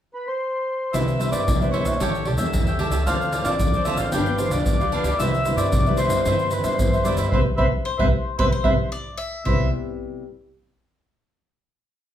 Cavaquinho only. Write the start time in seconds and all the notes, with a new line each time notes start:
0.93 E4 B4 C5 E5
1.19 E4 B4 C5 E5
1.32 E4 B4 C5 E5
1.61 B4 C5 E5
1.72 E4 B4 C5 E5
1.85 B4 C5 E5
2.01 G4 A4 C#5 G5
2.26 G4 A4 C#5 G5
2.38 A4 C#5 G5
2.67 A4 C#5 G5
2.79 G4 A4 C#5 G5
2.92 G4 A4 C#5 G5
3.06 F4 A4 C5 D5
3.32 F4 A4 C5 D5
3.45 F4 A4 C5 D5
3.75 A4 C5 D5
3.86 F4 A4 C5 D5
3.99 A4 C5 D5
4.14 D4 G4 B4 F5
4.38 D4 G4 B4 F5
4.51 G4 B4 F5
4.80 G4 B4 F5
4.92 D4 G4 B4 F5
5.04 D4 G4 B4 F5
5.19 E4 B4 C5 E5
5.45 E4 B4 C5 E5
5.57 E4 B4 C5 E5
5.86 B4 C5 E5
5.98 E4 B4 C5 E5
6.11 B4 C5 E5
6.27 E4 B4 C5 E5
6.52 E4 B4 C5 E5
6.64 B4 C5 E5
6.93 B4 C5 E5
7.05 E4 B4 C5 E5
7.18 E4 B4 C5 E5
7.33 B4 C5 E5
7.58 B4 C5 E5
7.99 B4 C5 E5
8.39 B4 C5 E5
8.64 B4 C5 E5
9.46 E4 B4 C5 E5